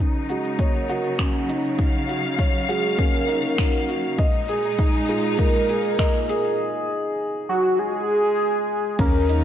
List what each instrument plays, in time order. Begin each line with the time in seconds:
Already playing: string section C#3 F#3 D#4, felt piano D#4
0.14 shaker
0.29 felt piano F#4, soft synth lead G#4, shaker
0.44 shaker
0.59 soft synth lead A#4, felt piano C#5, kick, shaker
0.75 shaker
0.89 felt piano F#4, shaker
1.04 shaker
1.19 felt piano C#4, finger snap, kick, shaker
1.34 shaker
1.49 felt piano D#4, shaker
1.64 shaker
1.78 string section F5, kick, shaker
1.94 shaker
2.09 felt piano F#4, shaker
2.24 shaker
2.39 felt piano C#5, kick, shaker
2.54 shaker
2.68 felt piano F#4, soft synth lead G#4, shaker
2.84 shaker
2.98 felt piano C#4, soft synth lead A#4, kick, shaker
3.14 shaker
3.28 felt piano D#4, shaker
3.44 shaker
3.58 finger snap, kick, shaker
3.73 shaker
3.88 felt piano F#4, shaker
4.04 shaker
4.18 string section A#2 G#3 D#4, felt piano D#5, kick, shaker
4.34 shaker
4.48 felt piano G#4, shaker
4.64 shaker
4.78 felt piano D#4, kick, shaker
4.93 shaker
5.08 felt piano F4, soft synth lead G#4, shaker
5.23 shaker
5.38 soft synth lead A#4, kick, shaker
5.54 shaker
5.69 felt piano G#4, shaker
5.84 shaker
5.99 felt piano D#5, finger snap, kick, shaker
6.14 shaker
6.29 felt piano G#4, shaker
6.44 shaker
7.49 soft synth lead F#4
7.79 soft synth lead G#4
8.99 detuned saw bass D#2, string section C#3 F#3 D#4, felt piano C#4, soft synth lead A#4, kick, crash, shaker
9.14 shaker
9.29 felt piano D#4, shaker